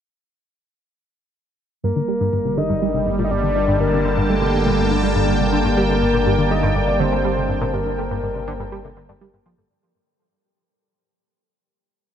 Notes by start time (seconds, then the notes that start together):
1.84 G1 G2 G3 A#4
1.96 D3
2.08 G3
2.21 G2
2.26 D3
2.33 G2
2.45 C3
2.57 D3 D#5
2.70 G2
2.79 G3 A#3 A5
2.94 C3
3.07 G2
3.19 A#2
3.24 D#5
3.31 G2 D5 G5
3.43 D3
3.56 G3
3.68 G2
3.80 G2 A#4
3.93 C3
4.05 D3
4.17 G2
4.29 G3 A4
4.42 C3
4.54 G2
4.66 A#2
4.79 G2
4.91 D3
5.03 G3
5.16 G2
5.28 G2
5.40 C3
5.53 D3
5.65 G2
5.77 G3 G4 A#4
5.89 C3 A4
6.02 G2
6.14 A#2 A#4
6.26 G2 G4
6.39 D3
6.51 G3 A4 D#5
6.63 G2 A#4
6.75 G2 D5
6.88 C3 D5
7.00 D3 C5 G5
7.12 G2
7.25 G3 G4
7.37 C3 A4
7.49 G2
7.61 A#2 A#4
7.74 G2 G4 A#4
7.86 D3
7.98 G3 A4
8.11 G2 A#4
8.23 G2
8.35 C3 D5
8.48 D3 G5
8.60 G2
8.72 G3 G4
8.84 C3 A4
8.97 D3
9.09 G2 D5
9.21 G3 G4
9.34 G2
9.46 F3 G5
9.58 G2 A4